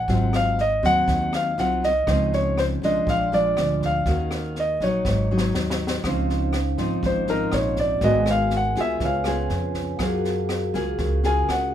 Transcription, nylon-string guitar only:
0.09 1.06 G#2 soft
0.09 0.58 F#3 medium
0.09 0.58 C4 medium
0.09 0.59 F4 medium
0.83 1.54 F#3 medium
0.83 1.54 C4 medium
1.08 2.05 D#3 medium
1.58 1.90 F#3 medium
1.58 1.90 C4 medium
1.58 1.91 F4 medium
2.07 3.04 C#3 medium
2.07 2.78 F3 medium
2.07 2.78 C4 soft
2.07 2.78 D#4 medium
2.83 3.28 F3 medium
2.83 3.29 G#3 medium
2.83 3.29 D4 medium
3.07 4.04 A#2 medium
3.32 4.02 F3 medium
3.32 4.03 G#3 medium
3.32 4.03 D4 medium
4.07 4.82 D#3 medium
4.07 4.56 A#3 soft
4.07 4.56 C#4 medium
4.07 4.56 F#4 medium
4.82 5.27 F#3 medium
4.82 5.27 D#4 medium
5.07 6.03 G#2 medium
5.31 6.01 F#3 medium
5.31 6.01 D#4 medium
6.06 7.02 C#3 medium
6.06 6.54 F3 soft
6.06 6.54 C4 medium
6.06 6.54 D#4 medium
6.78 7.24 F3 medium
6.78 7.24 C4 medium
6.78 7.24 D#4 medium
7.03 8.00 G#2 medium
7.28 7.99 F3 medium
7.28 7.99 C4 medium
7.28 7.99 D#4 medium
8.03 8.99 G#3 medium
8.03 8.73 B3 medium
8.03 8.73 F#4 medium
8.03 8.73 A#4 medium
8.77 9.22 B3 medium
8.77 9.22 F4 medium
8.77 9.22 G#4 medium
9.02 9.98 C#3 medium
9.26 9.96 B3 medium
9.26 9.96 F4 medium
9.26 9.97 G#4 medium
10.00 10.97 F#3 soft
10.00 10.70 A#3 medium
10.00 10.71 F4 medium
10.00 10.71 G#4 medium
10.74 11.20 A#3 medium
10.74 11.20 F4 medium
10.74 11.20 G#4 medium
11.00 11.74 C#3 medium
11.24 11.74 A#3 medium
11.24 11.74 F4 medium
11.24 11.74 G#4 medium

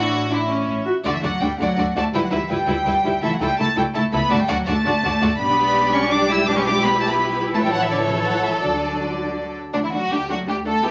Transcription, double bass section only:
0.00 0.67 A1 medium
0.68 0.75 A1 medium
1.05 1.12 D2 medium
1.23 1.30 D2 medium
1.41 1.48 D2 medium
1.59 1.67 D2 medium
1.78 1.85 D2 medium
1.95 2.03 D2 medium
2.13 2.21 D2 medium
2.32 2.39 D2 medium
2.50 2.58 D2 medium
2.68 2.75 D2 medium
2.86 2.93 D2 medium
3.04 3.12 D2 medium
3.22 3.29 C#2 medium
3.40 3.48 C#2 medium
3.59 3.66 C#2 medium
3.76 3.84 C#2 medium
3.94 4.02 C#2 medium
4.13 4.20 C#2 loud
4.32 4.39 D2 medium
4.49 4.56 D2 loud
4.67 4.74 D2 medium
4.85 4.92 D2 loud
5.03 5.11 D2 loud
5.21 5.29 D2 loud
5.40 7.51 B1 medium
7.55 8.61 A1 medium
8.63 9.56 D2 medium
9.74 10.06 D2 medium
10.11 10.43 D2 medium
10.46 10.78 D2 medium
10.83 10.91 D2 medium

